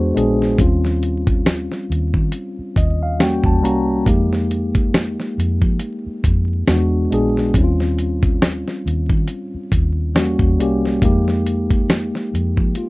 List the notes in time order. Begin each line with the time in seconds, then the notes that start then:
Already playing: E2 G#3 B3 D4 F#4 G#4 C5
0.15 A#1 G#3 B3 D4 G#4, closed hi-hat
0.42 snare
0.58 D#2 G3 C4 C#4 F4, kick, closed hi-hat
0.85 snare
1.03 closed hi-hat
1.27 kick, closed hi-hat
1.46 snare, closed hi-hat
1.72 snare
1.90 D#2, closed hi-hat
2.14 D#3, kick
2.32 closed hi-hat
2.59 muted fingered electric bass stroke
2.76 D#2 D#5, kick, closed hi-hat
3.03 F5
3.19 E2 G3 A#3 C#4 F#4 G5, snare, closed hi-hat
3.44 E2 A5, kick
3.62 C2 G3 A#3 C#4 F#4 A#5, closed hi-hat
4.06 F2 G#3 A#3 D#4 G4, kick, closed hi-hat
4.33 snare
4.51 closed hi-hat
4.75 kick, closed hi-hat
4.94 snare, closed hi-hat
5.20 snare
5.38 F2, closed hi-hat
5.62 F3, kick
5.80 closed hi-hat
6.06 muted fingered electric bass stroke
6.24 F2, kick, closed hi-hat
6.67 E2 G#3 B3 D4 F#4, snare, closed hi-hat
7.11 A#1 G#3 B3 D4 G#4, closed hi-hat
7.37 snare
7.54 D#2 G3 C4 C#4 E4, kick, closed hi-hat
7.64 F4
7.80 snare
7.99 closed hi-hat
8.23 kick, closed hi-hat
8.42 snare, closed hi-hat
8.68 snare
8.86 D#2, closed hi-hat
9.10 D#3, kick
9.28 closed hi-hat
9.54 muted fingered electric bass stroke
9.72 D#2, kick, closed hi-hat
10.15 E2 G3 A#3 C#4 F#4, snare, closed hi-hat
10.39 E2, kick
10.59 C2 G3 A#3 C#4 G4, closed hi-hat
10.85 snare
11.02 F2 G#3 A#3 D#4 G4, kick, closed hi-hat
11.28 snare
11.46 closed hi-hat
11.70 kick, closed hi-hat
11.90 snare, closed hi-hat
12.15 snare
12.34 F2, closed hi-hat
12.57 F3, kick
12.75 F4, closed hi-hat